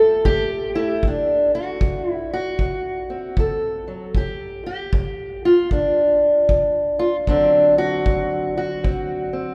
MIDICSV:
0, 0, Header, 1, 3, 480
1, 0, Start_track
1, 0, Tempo, 782269
1, 628, Time_signature, 4, 2, 24, 8
1, 5856, End_track
2, 0, Start_track
2, 0, Title_t, "Steel-string acoustic guitar"
2, 0, Program_c, 0, 25
2, 0, Note_on_c, 0, 45, 78
2, 0, Note_on_c, 0, 57, 57
2, 0, Note_on_c, 0, 69, 102
2, 117, Note_off_c, 0, 45, 0
2, 153, Note_off_c, 0, 69, 0
2, 156, Note_on_c, 0, 67, 112
2, 166, Note_on_c, 0, 45, 80
2, 458, Note_off_c, 0, 57, 0
2, 462, Note_on_c, 0, 64, 97
2, 470, Note_on_c, 0, 57, 54
2, 601, Note_off_c, 0, 45, 0
2, 617, Note_off_c, 0, 57, 0
2, 632, Note_off_c, 0, 67, 0
2, 635, Note_off_c, 0, 64, 0
2, 644, Note_on_c, 0, 38, 73
2, 659, Note_on_c, 0, 62, 72
2, 944, Note_off_c, 0, 62, 0
2, 950, Note_on_c, 0, 66, 86
2, 1080, Note_off_c, 0, 38, 0
2, 1112, Note_on_c, 0, 38, 78
2, 1294, Note_off_c, 0, 66, 0
2, 1294, Note_on_c, 0, 64, 86
2, 1419, Note_off_c, 0, 64, 0
2, 1433, Note_on_c, 0, 66, 93
2, 1554, Note_off_c, 0, 38, 0
2, 1597, Note_on_c, 0, 38, 63
2, 1901, Note_on_c, 0, 60, 47
2, 2036, Note_off_c, 0, 38, 0
2, 2076, Note_on_c, 0, 38, 70
2, 2079, Note_off_c, 0, 66, 0
2, 2083, Note_on_c, 0, 69, 74
2, 2378, Note_on_c, 0, 54, 44
2, 2516, Note_off_c, 0, 38, 0
2, 2532, Note_off_c, 0, 60, 0
2, 2552, Note_off_c, 0, 54, 0
2, 2552, Note_on_c, 0, 43, 73
2, 2555, Note_off_c, 0, 69, 0
2, 2561, Note_on_c, 0, 67, 87
2, 2854, Note_off_c, 0, 67, 0
2, 2862, Note_on_c, 0, 67, 92
2, 2993, Note_off_c, 0, 43, 0
2, 3031, Note_on_c, 0, 43, 71
2, 3335, Note_off_c, 0, 67, 0
2, 3346, Note_on_c, 0, 65, 95
2, 3473, Note_off_c, 0, 43, 0
2, 3509, Note_on_c, 0, 43, 64
2, 3510, Note_off_c, 0, 65, 0
2, 3513, Note_on_c, 0, 62, 74
2, 3952, Note_off_c, 0, 43, 0
2, 3990, Note_on_c, 0, 43, 70
2, 4289, Note_off_c, 0, 62, 0
2, 4291, Note_on_c, 0, 65, 90
2, 4389, Note_off_c, 0, 65, 0
2, 4433, Note_off_c, 0, 43, 0
2, 4464, Note_on_c, 0, 38, 71
2, 4470, Note_on_c, 0, 62, 86
2, 4471, Note_on_c, 0, 50, 53
2, 4476, Note_on_c, 0, 54, 49
2, 4480, Note_on_c, 0, 60, 50
2, 4769, Note_off_c, 0, 62, 0
2, 4776, Note_on_c, 0, 66, 95
2, 4910, Note_off_c, 0, 38, 0
2, 4943, Note_on_c, 0, 38, 72
2, 5252, Note_off_c, 0, 66, 0
2, 5262, Note_on_c, 0, 66, 94
2, 5389, Note_off_c, 0, 38, 0
2, 5422, Note_on_c, 0, 38, 67
2, 5426, Note_off_c, 0, 60, 0
2, 5428, Note_on_c, 0, 60, 45
2, 5718, Note_off_c, 0, 60, 0
2, 5725, Note_on_c, 0, 60, 51
2, 5856, Note_off_c, 0, 38, 0
2, 5856, Note_off_c, 0, 50, 0
2, 5856, Note_off_c, 0, 54, 0
2, 5856, Note_off_c, 0, 60, 0
2, 5856, Note_off_c, 0, 66, 0
2, 5856, End_track
3, 0, Start_track
3, 0, Title_t, "Drums"
3, 154, Note_on_c, 9, 36, 66
3, 216, Note_off_c, 9, 36, 0
3, 632, Note_on_c, 9, 36, 65
3, 693, Note_off_c, 9, 36, 0
3, 1110, Note_on_c, 9, 36, 71
3, 1172, Note_off_c, 9, 36, 0
3, 1588, Note_on_c, 9, 36, 57
3, 1650, Note_off_c, 9, 36, 0
3, 2067, Note_on_c, 9, 36, 62
3, 2128, Note_off_c, 9, 36, 0
3, 2544, Note_on_c, 9, 36, 62
3, 2605, Note_off_c, 9, 36, 0
3, 3023, Note_on_c, 9, 36, 70
3, 3085, Note_off_c, 9, 36, 0
3, 3503, Note_on_c, 9, 36, 58
3, 3565, Note_off_c, 9, 36, 0
3, 3982, Note_on_c, 9, 36, 64
3, 4044, Note_off_c, 9, 36, 0
3, 4463, Note_on_c, 9, 36, 58
3, 4524, Note_off_c, 9, 36, 0
3, 4945, Note_on_c, 9, 36, 71
3, 5006, Note_off_c, 9, 36, 0
3, 5427, Note_on_c, 9, 36, 60
3, 5488, Note_off_c, 9, 36, 0
3, 5856, End_track
0, 0, End_of_file